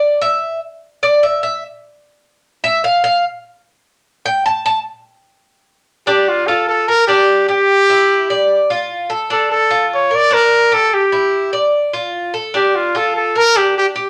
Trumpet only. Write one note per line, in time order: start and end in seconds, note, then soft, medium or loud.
6.07 6.30 G4 medium
6.28 6.48 F4 medium
6.47 6.68 A4 loud
6.69 6.90 A4 loud
6.88 7.06 A#4 loud
7.07 7.45 G4 loud
7.49 8.66 G4 loud
9.32 9.50 A4 medium
9.52 9.89 A4 loud
9.94 10.16 C#5 medium
10.15 10.35 D5 loud
10.33 10.75 A#4 loud
10.74 10.95 A4 loud
10.94 11.54 G4 medium
12.55 12.77 G4 medium
12.76 12.98 F4 medium
12.96 13.16 A4 loud
13.16 13.39 A4 loud
13.38 13.58 A#4 loud
13.57 13.76 G4 loud
13.78 13.86 G4 medium
13.97 14.10 G4 loud